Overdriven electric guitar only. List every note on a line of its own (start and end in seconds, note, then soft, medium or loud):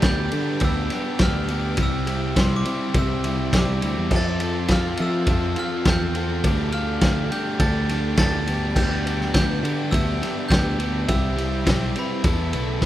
0.04 0.32 B3 medium
0.04 0.33 D4 medium
0.04 0.34 G4 medium
0.33 0.61 B3 medium
0.33 0.62 D4 medium
0.33 0.63 G4 loud
0.63 0.91 B3 medium
0.63 0.91 D4 medium
0.63 0.92 G4 loud
0.92 1.19 B3 medium
0.92 1.19 D4 medium
0.92 1.21 G4 medium
1.20 1.48 B3 medium
1.20 1.49 D4 medium
1.20 1.50 G4 loud
1.49 1.77 B3 medium
1.49 1.77 D4 medium
1.49 1.78 G4 loud
1.78 2.06 G3 loud
1.78 2.07 C4 medium
1.78 2.06 E4 loud
1.78 2.07 G4 loud
2.07 2.35 G3 medium
2.07 2.36 C4 medium
2.07 2.35 E4 medium
2.07 2.37 G4 medium
2.36 2.65 G3 medium
2.36 2.66 C4 medium
2.36 2.65 E4 loud
2.36 2.66 G4 medium
2.65 2.94 G3 medium
2.65 2.94 C4 loud
2.65 2.95 E4 loud
2.65 2.95 G4 loud
2.95 3.25 G3 medium
2.95 3.25 C4 medium
2.95 3.25 E4 medium
2.95 3.26 G4 medium
3.25 3.53 G3 medium
3.25 3.53 C4 medium
3.25 3.54 E4 medium
3.25 3.55 G4 medium
3.54 3.82 G3 medium
3.54 3.82 C4 medium
3.54 3.82 E4 medium
3.54 3.83 G4 medium
3.83 4.11 G3 medium
3.83 4.10 C4 loud
3.83 4.10 E4 medium
3.83 4.13 G4 loud
4.12 4.40 F3 medium
4.12 4.41 C4 loud
4.12 4.41 F4 loud
4.12 4.42 A4 loud
4.41 4.69 F3 medium
4.41 4.69 C4 medium
4.41 4.70 F4 medium
4.41 4.70 A4 medium
4.70 4.99 F3 medium
4.70 4.99 C4 medium
4.70 5.00 F4 medium
4.70 5.00 A4 medium
5.00 5.26 F3 medium
5.00 5.27 C4 medium
5.00 5.27 F4 medium
5.00 5.28 A4 loud
5.28 5.57 F3 medium
5.28 5.56 C4 medium
5.28 5.57 F4 medium
5.28 5.57 A4 loud
5.57 5.85 F3 medium
5.57 5.85 C4 medium
5.57 5.86 F4 loud
5.57 5.86 A4 medium
5.86 6.14 F3 medium
5.86 6.15 C4 medium
5.86 6.15 F4 medium
5.86 6.15 A4 medium
6.15 6.43 F3 medium
6.15 6.43 C4 medium
6.15 6.43 F4 medium
6.15 6.43 A4 medium
6.45 6.72 A3 medium
6.45 6.73 D4 loud
6.45 6.74 G4 loud
6.73 7.02 A3 medium
6.73 7.03 D4 medium
6.73 7.04 G4 medium
7.03 7.31 A3 medium
7.03 7.33 D4 medium
7.03 7.33 G4 medium
7.32 7.60 A3 medium
7.32 7.61 D4 loud
7.32 7.61 G4 loud
7.61 7.89 A3 medium
7.61 7.91 D4 loud
7.61 7.91 G4 medium
7.90 8.19 A3 medium
7.90 8.19 D4 medium
7.90 8.20 G4 medium
8.20 8.46 A3 medium
8.20 8.48 D4 medium
8.20 8.48 G4 medium
8.47 8.76 B3 medium
8.47 8.76 D4 medium
8.47 8.77 G4 loud
8.77 9.05 B3 medium
8.77 9.05 D4 loud
8.77 9.06 G4 loud
9.06 9.34 B3 medium
9.06 9.34 D4 medium
9.06 9.34 G4 medium
9.35 9.62 B3 medium
9.35 9.62 D4 medium
9.35 9.63 G4 loud
9.63 9.91 B3 medium
9.63 9.91 D4 loud
9.63 9.92 G4 loud
9.92 10.20 B3 medium
9.92 10.21 D4 medium
9.92 10.21 G4 loud
10.21 10.48 B3 medium
10.21 10.48 D4 medium
10.21 10.49 G4 loud
10.49 10.78 B3 medium
10.49 10.79 D4 loud
10.49 10.79 G4 medium
10.79 11.07 B3 medium
10.79 11.07 D4 loud
10.79 11.07 G4 loud
11.08 11.35 G3 loud
11.08 11.36 C4 loud
11.08 11.36 E4 loud
11.08 11.36 G4 loud
11.37 11.64 G3 medium
11.37 11.64 C4 medium
11.37 11.65 E4 medium
11.37 11.66 G4 loud
11.65 11.94 G3 medium
11.65 11.95 C4 medium
11.65 11.95 E4 medium
11.65 11.96 G4 medium
11.96 12.23 G3 loud
11.96 12.23 C4 loud
11.96 12.24 E4 loud
11.96 12.24 G4 loud
12.24 12.53 B3 loud
12.24 12.53 E4 loud
12.24 12.53 A4 loud
12.54 12.82 B3 medium
12.54 12.82 E4 medium
12.54 12.83 A4 medium